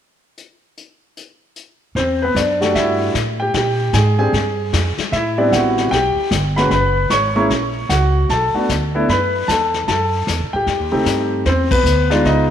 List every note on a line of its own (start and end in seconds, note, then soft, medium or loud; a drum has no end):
0.38 closed hi-hat soft
0.77 closed hi-hat medium
1.17 closed hi-hat medium
1.56 closed hi-hat medium
1.95 2.34 E2 medium
1.95 2.21 C4 medium
1.95 2.22 C5 medium
1.95 brush sweep soft
1.95 kick soft
1.95 snare soft
2.22 2.36 B3 medium
2.22 2.35 B4 medium
2.35 2.73 F#2 medium
2.35 2.60 D4 medium
2.35 2.73 D5 medium
2.35 kick soft
2.35 snare medium
2.35 hi-hat pedal medium
2.61 3.12 G3 medium
2.61 3.12 A3 medium
2.61 3.12 D4 medium
2.61 3.12 F#4 medium
2.61 snare soft
2.75 3.13 G2 medium
2.75 3.13 E4 medium
2.75 3.12 E5 medium
2.75 brush sweep soft
2.75 kick soft
2.75 snare soft
3.14 3.53 A2 medium
3.14 kick soft
3.14 snare medium
3.14 hi-hat pedal soft
3.40 3.54 G4 medium
3.40 3.53 G5 medium
3.54 3.92 A#2 medium
3.54 3.93 G4 medium
3.54 3.95 G5 medium
3.54 brush sweep soft
3.54 kick soft
3.54 snare soft
3.93 4.32 G#2 medium
3.93 4.19 G#4 medium
3.93 4.17 G#5 medium
3.93 kick soft
3.93 snare medium
3.93 hi-hat pedal soft
4.18 4.32 G#3 soft
4.18 4.32 C4 soft
4.18 4.32 D4 soft
4.18 4.32 G4 medium
4.18 4.95 G#4 medium
4.18 4.94 G#5 medium
4.33 4.71 G2 medium
4.33 brush sweep soft
4.33 kick soft
4.33 snare soft
4.73 4.97 F2 medium
4.73 kick soft
4.73 snare medium
4.73 hi-hat pedal soft
4.98 muted upright bass stroke soft
4.98 snare soft
5.12 5.51 A2 medium
5.12 5.37 E4 medium
5.12 5.36 E5 medium
5.12 brush sweep soft
5.12 kick soft
5.12 snare soft
5.38 5.89 G3 medium
5.38 5.89 B3 medium
5.38 5.89 C4 soft
5.38 5.53 D4 medium
5.38 5.89 E4 medium
5.38 5.53 D5 medium
5.52 5.90 A1 medium
5.52 5.91 F#4 medium
5.52 5.89 F#5 medium
5.52 kick soft
5.52 snare medium
5.52 hi-hat pedal soft
5.78 snare soft
5.91 6.15 B1 medium
5.91 6.30 G4 medium
5.91 6.28 G5 loud
5.91 brush sweep soft
5.91 kick soft
5.91 snare soft
6.16 muted upright bass stroke soft
6.31 6.69 G1 medium
6.31 kick soft
6.31 snare medium
6.31 hi-hat pedal medium
6.56 6.70 G#3 medium
6.56 6.70 A#3 medium
6.56 6.70 C#4 medium
6.56 6.70 F#4 medium
6.56 6.71 B4 medium
6.56 6.69 B5 medium
6.56 snare soft
6.70 7.09 F#1 medium
6.70 7.12 B5 loud
6.70 brush sweep soft
6.70 kick soft
6.70 snare soft
6.74 7.10 B4 medium
7.10 7.49 G#1 medium
7.10 7.36 C#5 medium
7.10 7.34 C#6 medium
7.10 kick soft
7.10 snare medium
7.10 hi-hat pedal soft
7.35 7.48 G#3 medium
7.35 7.49 A#3 medium
7.35 7.49 C#4 medium
7.35 7.49 E4 medium
7.35 7.87 C#5 medium
7.35 7.91 C#6 medium
7.50 7.88 A#1 medium
7.50 brush sweep soft
7.50 kick soft
7.50 snare soft
7.89 8.28 C#2 medium
7.89 8.28 F#4 medium
7.89 8.26 F#5 medium
7.89 kick soft
7.89 snare medium
7.89 hi-hat pedal soft
8.29 8.53 B1 medium
8.29 9.06 A4 medium
8.29 9.05 A5 medium
8.29 brush sweep soft
8.29 kick soft
8.29 snare soft
8.54 8.68 A3 medium
8.54 8.68 B3 soft
8.54 8.68 D4 soft
8.54 8.68 F#4 medium
8.54 muted upright bass stroke soft
8.69 9.07 D2 medium
8.69 kick soft
8.69 snare medium
8.69 hi-hat pedal medium
8.95 9.07 A3 medium
8.95 9.07 B3 medium
8.95 9.08 D4 medium
8.95 9.08 E4 medium
9.08 9.47 F#2 medium
9.08 9.50 B5 medium
9.08 brush sweep soft
9.08 kick soft
9.08 snare soft
9.12 9.47 B4 medium
9.48 9.86 E2 medium
9.48 9.86 A4 medium
9.48 9.85 A5 medium
9.48 kick soft
9.48 snare medium
9.48 hi-hat pedal medium
9.74 snare soft
9.88 10.26 F#2 medium
9.88 10.50 A4 medium
9.88 10.55 A5 medium
9.88 brush sweep soft
9.88 kick soft
9.88 snare soft
10.27 10.42 E2 medium
10.27 kick soft
10.27 snare soft
10.27 hi-hat pedal soft
10.40 10.53 C2 medium
10.53 10.66 A1 medium
10.53 10.91 G4 medium
10.53 11.28 G5 medium
10.67 10.79 F2 medium
10.67 brush sweep soft
10.67 kick soft
10.67 snare soft
10.79 10.93 D#2 medium
10.92 11.05 C2 medium
10.92 11.43 A3 medium
10.92 11.43 C4 medium
10.92 11.43 D#4 medium
10.92 11.43 G4 medium
11.06 11.44 G2 medium
11.06 kick soft
11.06 snare medium
11.06 hi-hat pedal medium
11.46 11.83 E2 medium
11.46 11.71 C4 medium
11.46 11.72 C5 medium
11.46 brush sweep soft
11.46 kick soft
11.46 snare soft
11.71 12.09 B3 medium
11.71 12.08 B4 medium
11.71 kick medium
11.71 ride medium
11.83 12.23 D2 medium
11.83 hi-hat pedal medium
12.10 12.50 G#3 medium
12.10 12.50 B3 medium
12.10 12.27 D#4 medium
12.10 12.50 F4 medium
12.10 12.24 D5 medium
12.10 snare soft
12.14 12.26 D4 medium
12.25 12.50 C#2 medium
12.25 12.50 D#5 medium
12.25 brush sweep soft
12.25 kick soft
12.25 snare soft
12.29 12.50 D#4 medium